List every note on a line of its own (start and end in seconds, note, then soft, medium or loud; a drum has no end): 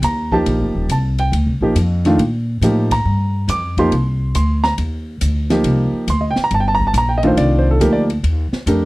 0.02 0.45 D#2 loud
0.02 0.32 A#5 medium
0.02 hi-hat pedal medium
0.02 ride medium
0.32 0.87 F3 medium
0.32 0.87 A#3 medium
0.32 0.87 D#4 medium
0.32 0.87 G4 medium
0.32 0.86 A5 medium
0.32 kick medium
0.46 0.62 A#1 medium
0.46 ride medium
0.60 0.74 F1 medium
0.75 0.88 D#1 medium
0.89 1.31 C2 medium
0.89 1.19 A5 medium
0.89 hi-hat pedal medium
0.89 ride medium
1.18 1.33 G5 medium
1.18 ride soft
1.32 1.48 D2 medium
1.32 ride medium
1.46 1.60 C2 medium
1.61 1.75 A#1 medium
1.61 1.75 F3 medium
1.61 1.75 A#3 medium
1.61 1.75 D#4 medium
1.61 1.75 G4 medium
1.75 2.17 F2 loud
1.75 hi-hat pedal medium
1.75 ride medium
2.05 2.18 D#3 medium
2.05 2.18 A3 medium
2.05 2.19 D4 medium
2.05 2.19 F4 medium
2.05 snare soft
2.05 ride soft
2.18 2.60 A#2 medium
2.18 ride medium
2.61 3.04 A2 medium
2.61 2.89 F3 medium
2.61 2.89 A#3 medium
2.61 2.89 D#4 medium
2.61 2.89 G4 medium
2.61 hi-hat pedal medium
2.61 ride medium
2.91 3.45 A#5 medium
2.91 kick medium
2.91 ride medium
3.05 3.47 G2 medium
3.48 3.90 F2 loud
3.48 3.77 D6 loud
3.48 hi-hat pedal medium
3.48 ride medium
3.77 3.91 F3 medium
3.77 3.91 A#3 medium
3.77 3.91 D#4 medium
3.77 3.91 G4 medium
3.77 4.32 C6 medium
3.77 kick medium
3.77 ride soft
3.92 4.34 C2 medium
3.92 ride medium
4.35 4.77 D2 medium
4.35 4.63 C6 medium
4.35 hi-hat pedal medium
4.35 ride medium
4.64 4.72 A#5 loud
4.64 snare medium
4.78 5.20 D#2 medium
4.78 ride medium
5.21 5.63 D2 medium
5.21 hi-hat pedal medium
5.21 ride medium
5.50 6.05 F3 medium
5.50 6.05 A#3 medium
5.50 6.05 D#4 medium
5.50 6.06 G4 medium
5.50 snare medium
5.50 ride soft
5.64 5.91 C2 medium
5.64 ride medium
5.93 muted upright bass stroke soft
6.07 6.35 D2 medium
6.07 6.23 C6 medium
6.07 hi-hat pedal medium
6.07 ride medium
6.21 6.36 D#5 medium
6.31 6.41 G5 medium
6.36 muted upright bass stroke soft
6.36 snare medium
6.44 6.51 A#5 loud
6.51 6.93 G1 medium
6.51 6.62 A5 medium
6.51 ride medium
6.60 6.65 G5 medium
6.68 6.81 A5 medium
6.75 6.84 A#5 loud
6.79 kick medium
6.87 6.94 A5 medium
6.94 7.36 A#1 loud
6.94 hi-hat pedal medium
6.94 ride medium
6.98 7.10 A#5 loud
7.09 7.23 G5 medium
7.18 7.27 D#5 medium
7.23 7.78 D#3 medium
7.23 7.78 A3 medium
7.23 7.78 D4 medium
7.23 7.78 F4 medium
7.23 ride soft
7.27 7.36 C5 medium
7.37 7.79 C2 medium
7.37 7.66 D5 medium
7.37 ride medium
7.58 7.69 C5 medium
7.71 7.79 A4 medium
7.80 8.22 D2 medium
7.80 8.07 F3 medium
7.80 8.07 A#3 medium
7.80 8.07 D#4 medium
7.80 8.07 G4 medium
7.80 7.95 A#4 medium
7.80 hi-hat pedal medium
7.80 ride medium
7.93 8.02 D5 medium
8.10 ride medium
8.23 8.51 D#2 medium
8.23 ride medium
8.53 muted upright bass stroke soft
8.53 snare medium
8.66 8.85 F2 loud
8.66 8.85 A3 medium
8.66 8.85 D4 medium
8.66 8.85 G4 medium
8.66 8.85 A#4 medium
8.66 hi-hat pedal medium
8.66 ride medium